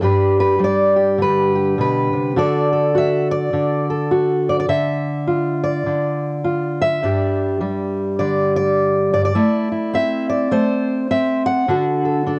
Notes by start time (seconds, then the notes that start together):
0.01 G2 G3 D4 G4 B4
0.40 B4
0.59 G3
0.64 D5
0.96 G4
1.18 D3 B4
1.55 G4
1.78 B2 B4
2.13 C3
2.36 D3 F#4 A4 D5
2.72 A4
2.95 F#4 E5
3.31 D5
3.53 D3
3.90 A4
4.11 F#4
4.49 D5
4.60 D5
4.69 D3 E5
5.28 F4
5.64 D5
5.86 D3
6.44 F4
6.82 E5
7.03 G2 G3 D4 G4
7.61 G3
8.19 D3 D5
8.56 D5
9.13 G2 D5
9.25 D5
9.35 A3 E4
9.72 E4
9.93 C4 E5
10.30 D5
10.51 A3 C5
11.11 C4 E5
11.46 F#5
11.68 D3 D4 F#4 A4
12.05 A4
12.26 D4 A4